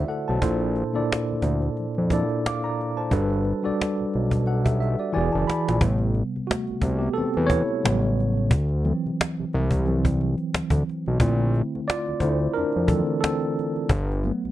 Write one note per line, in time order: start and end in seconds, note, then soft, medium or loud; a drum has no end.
0.00 0.43 D3 medium
0.00 0.43 A3 medium
0.00 0.42 E4 medium
0.00 0.44 F#4 medium
0.00 0.09 A4 medium
0.00 0.29 C5 medium
0.00 0.44 D5 medium
0.00 0.44 E5 medium
0.08 0.27 A4 medium
0.08 0.26 F#5 medium
0.08 cajon slap soft
0.28 0.40 B1 medium
0.28 0.42 C5 soft
0.28 0.60 A5 medium
0.28 cajon slap soft
0.41 0.84 A#1 loud
0.41 0.80 A#2 medium
0.41 0.80 A#3 medium
0.41 0.81 D4 medium
0.41 0.81 E4 medium
0.41 0.81 A4 medium
0.41 0.81 C5 medium
0.41 cajon bass loud
0.60 cajon slap soft
0.76 cajon slap soft
0.93 1.02 D2 soft
0.93 1.82 A#2 medium
0.93 1.82 A#3 medium
0.93 1.82 D4 medium
0.93 1.83 E4 medium
0.93 1.83 A4 medium
0.93 1.83 D5 medium
0.98 cajon slap soft
1.12 cajon slap medium
1.28 1.36 D2 soft
1.28 cajon slap soft
1.42 1.70 D2 medium
1.42 cajon bass medium
1.62 cajon slap soft
1.77 1.87 F2 soft
1.77 cajon slap soft
1.95 2.24 F2 medium
1.95 cajon slap soft
2.10 2.88 A#2 medium
2.10 2.89 A#3 medium
2.10 2.89 D4 medium
2.10 2.89 E4 medium
2.10 2.89 A4 medium
2.10 2.46 D5 medium
2.10 cajon bass medium
2.29 cajon slap soft
2.46 2.63 F5 medium
2.46 2.63 D6 medium
2.46 cajon slap medium
2.62 2.96 D5 soft
2.62 2.96 A#5 medium
2.62 cajon slap soft
2.81 cajon slap soft
2.97 3.29 C5 soft
2.97 3.29 A5 medium
2.97 cajon slap soft
3.10 3.53 G1 medium
3.10 3.50 G3 medium
3.10 3.50 D4 medium
3.10 3.51 F#4 medium
3.10 3.51 A4 medium
3.10 3.51 B4 medium
3.10 cajon bass medium
3.29 cajon slap soft
3.33 cajon slap soft
3.45 cajon slap soft
3.63 3.72 B1 soft
3.63 4.51 G3 medium
3.63 4.52 D4 medium
3.63 4.46 F#4 medium
3.63 4.46 A4 medium
3.63 4.47 D5 medium
3.63 cajon slap soft
3.81 cajon slap medium
3.98 4.06 B1 soft
3.98 cajon slap soft
4.14 4.96 B1 medium
4.14 cajon slap soft
4.31 cajon bass medium
4.46 4.65 A4 medium
4.46 4.65 F#5 medium
4.46 cajon slap soft
4.65 4.97 G4 soft
4.65 4.79 E5 medium
4.65 cajon bass medium
4.80 5.12 E5 medium
4.80 cajon slap soft
4.99 5.12 F#4 soft
4.99 5.13 D5 medium
4.99 cajon slap soft
5.12 5.30 E1 medium
5.12 5.69 E3 medium
5.12 5.69 E4 medium
5.12 5.69 F#4 medium
5.12 5.21 G4 medium
5.12 5.70 D5 medium
5.12 5.31 G#5 medium
5.12 cajon slap medium
5.21 5.73 G#4 medium
5.32 5.46 F#1 medium
5.32 5.46 A5 medium
5.32 cajon slap soft
5.47 5.79 B5 medium
5.47 cajon slap medium
5.69 5.79 A#1 medium
5.69 cajon slap medium
5.80 6.23 A1 loud
5.80 6.78 C3 soft
5.80 6.78 G3 soft
5.80 6.78 B3 medium
5.80 cajon bass loud
5.98 cajon slap soft
6.15 cajon slap soft
6.36 6.42 C2 soft
6.36 cajon slap soft
6.47 6.98 A3 medium
6.47 7.02 F#4 medium
6.47 cajon slap loud
6.67 6.75 C2 medium
6.67 cajon slap soft
6.82 7.09 C2 medium
6.82 cajon bass medium
6.99 7.16 B3 medium
6.99 7.15 G4 medium
6.99 cajon slap soft
7.14 7.46 A4 medium
7.14 cajon slap soft
7.18 7.25 E2 medium
7.18 7.48 C4 medium
7.34 7.63 E2 medium
7.34 cajon slap soft
7.47 8.12 C#5 loud
7.47 cajon bass medium
7.51 8.14 E4 medium
7.68 cajon slap soft
7.83 8.54 A1 loud
7.83 8.47 C#3 medium
7.83 8.47 F#3 medium
7.83 8.48 G3 soft
7.83 8.48 B3 medium
7.83 cajon slap loud
8.02 cajon slap soft
8.20 cajon slap soft
8.37 cajon slap soft
8.51 8.93 D2 loud
8.51 cajon bass loud
8.69 cajon slap soft
8.85 9.85 E3 medium
8.85 9.85 F#3 medium
8.85 9.86 C4 medium
8.85 cajon slap soft
9.06 9.11 C2 soft
9.06 cajon slap soft
9.21 cajon slap loud
9.37 9.45 C2 soft
9.37 cajon slap soft
9.53 10.36 C2 loud
9.53 cajon slap soft
9.71 cajon bass medium
9.86 10.16 E3 medium
9.86 10.17 F#3 soft
9.86 10.17 C4 medium
9.86 cajon slap soft
10.05 cajon bass medium
10.21 cajon slap soft
10.38 cajon slap soft
10.54 10.62 D2 soft
10.54 cajon slap medium
10.70 10.83 D2 loud
10.70 cajon bass medium
10.89 cajon slap soft
11.06 11.19 B1 medium
11.06 cajon slap soft
11.20 11.62 A#1 loud
11.20 12.18 D3 medium
11.20 12.19 A3 medium
11.20 12.19 C4 medium
11.20 12.18 E4 medium
11.20 cajon bass loud
11.54 cajon slap soft
11.75 11.81 D2 soft
11.75 cajon slap soft
11.88 12.20 F4 medium
11.88 12.23 D5 loud
11.88 cajon slap loud
12.06 12.14 D2 soft
12.06 cajon slap soft
12.20 12.48 D2 loud
12.20 12.54 E4 medium
12.20 12.56 C5 medium
12.20 cajon bass medium
12.40 cajon slap soft
12.54 12.88 D4 medium
12.54 12.89 A#4 loud
12.54 cajon slap soft
12.58 12.65 F2 medium
12.72 13.02 F2 medium
12.72 cajon slap soft
12.87 13.20 D3 soft
12.87 13.20 E3 soft
12.87 13.20 A3 soft
12.87 13.22 C4 medium
12.87 13.19 A4 medium
12.87 cajon bass loud
13.07 cajon slap soft
13.21 13.73 C4 medium
13.21 13.71 A4 medium
13.21 cajon slap loud
13.40 cajon slap soft
13.59 cajon slap soft
13.76 cajon slap soft
13.89 14.32 G1 loud
13.89 cajon bass loud
14.08 cajon slap soft
14.12 cajon slap soft
14.23 14.52 F#3 medium
14.23 14.52 A3 medium
14.23 14.52 B3 medium
14.23 cajon slap soft
14.44 14.50 B1 soft
14.44 cajon slap soft